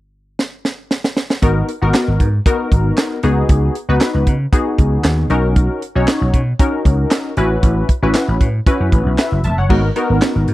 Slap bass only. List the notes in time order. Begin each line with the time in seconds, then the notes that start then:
1.43 G#1
1.82 G#1
2.08 G#1
2.20 G#2
2.72 G#1
3.23 C#2
3.49 C#2
3.89 C#2
4.14 C#2
4.27 C#3
4.78 C#2
5.04 D#2
5.30 B1
5.96 B1
6.21 B1
6.34 B2
6.85 C#2
7.37 A1
7.63 A1
8.02 A1
8.28 A1
8.41 A2
8.80 F#2
8.92 A1
9.06 B1
9.32 F#1
9.44 E1
9.58 F#1
9.70 G#1
10.10 G#1
10.36 G#1
10.48 G#2